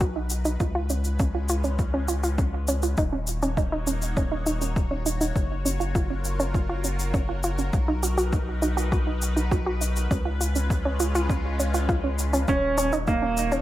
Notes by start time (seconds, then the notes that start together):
Already playing: B1 D#4 F#4 A#4 B4
0.00 F#4, kick, shaker
0.16 D#4
0.30 shaker
0.45 D#4, shaker
0.60 C#2 G#3 C#4 F4, kick, shaker
0.75 F4
0.90 C#4, shaker
1.04 shaker
1.19 C#4, kick, shaker
1.35 F4
1.49 F4, shaker
1.64 C#4, shaker
1.79 kick, shaker
1.94 C#4
2.08 F4, shaker
2.23 F4, shaker
2.38 C#4, kick, shaker
2.68 C#4, shaker
2.83 F4, shaker
2.97 D#1 A#3 D#4 F#4 C#5, kick, shaker
3.12 C#4
3.27 shaker
3.42 C#4, shaker
3.57 D#4, kick, shaker
3.72 D#4
3.87 C#4, shaker
4.02 shaker
4.17 C#4, kick, shaker
4.32 D#4
4.46 D#4, shaker
4.61 C#4, shaker
4.76 kick, shaker
4.91 C#4
5.06 D#4, shaker
5.21 D#4, shaker
5.35 F#1 C#4 F4 A#4, kick, shaker
5.65 C#4, shaker
5.80 F4, shaker
5.95 F4, kick, shaker
6.10 C#4
6.25 shaker
6.40 C#4, shaker
6.55 F4, kick, shaker
6.69 F4
6.84 C#4, shaker
6.99 shaker
7.14 C#4, kick, shaker
7.29 F4
7.43 F4, shaker
7.58 C#4, shaker
7.73 B1 D#4 B4, kick, shaker
7.88 D#4
8.03 F#4, shaker
8.18 F#4, shaker
8.33 D#4, kick, shaker
8.62 D#4, shaker
8.77 F#4, shaker
8.92 F#4, kick, shaker
9.07 D#4
9.22 shaker
9.36 D#4, shaker
9.51 F#4, kick, shaker
9.66 F#4
9.81 D#4, shaker
9.96 shaker
10.11 C#2 G#3 C#4 F4, kick, shaker
10.25 F4
10.41 F4, shaker
10.55 C#4, shaker
10.70 kick, shaker
10.85 C#4
11.00 F4, shaker
11.15 F4, shaker
11.30 C#4, kick, shaker
11.60 C#4, shaker
11.74 F4, shaker
11.89 F4, kick, shaker
12.04 C#4
12.19 shaker
12.33 C#4, shaker
12.48 D#1 A#3 C#4 D#4 F#4 C#5, kick, shaker
12.78 C#4, shaker
12.93 D#4, shaker
13.07 A#3 D#4, kick, shaker
13.22 C#4
13.37 shaker
13.52 C#4, shaker